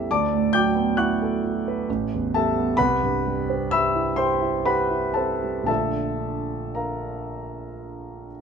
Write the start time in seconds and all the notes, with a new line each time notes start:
Already playing: C4 E4 G4 A4 C5 E5 B5 E6
0.11 D2 D5 A5 D6
0.34 A2
0.53 F#3 G5 D6 G6
0.75 B3
0.97 E4 F#5 C#6 F#6
1.22 A4
1.44 F#4
1.68 B4
1.89 A1
2.14 E2
2.34 G3 A4 E5 A5
2.58 B3
2.77 C2 B4 F#5 B5
3.02 G2
3.27 G3
3.49 C4
3.71 G3 E5 B5 E6
3.95 E4
4.16 G4 C5 G5 C6
4.42 E4
4.65 G4 B4 F#5 B5
4.90 E4
5.14 C4 A4 E5 A5
5.43 G3
5.63 A#1 D3 A3 D4 A5
5.68 F4 A4 E5
6.75 A#4 F5 A#5